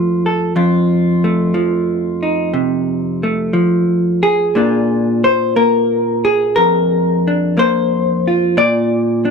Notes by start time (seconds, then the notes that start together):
Already playing: F2 F3 A3 F4
0.26 A4
0.56 F2 F4
1.24 A3
1.54 F3
2.23 D#4
2.53 C3
3.23 A3
3.53 F3
4.23 G#4
4.55 A#2 A#3 D4 F4
5.24 C5
5.56 A#3 A#4
6.25 G#4
6.56 F2 A#4
7.28 D4
7.57 A#3 C5
8.27 F4
8.57 A#2 D5
9.25 D4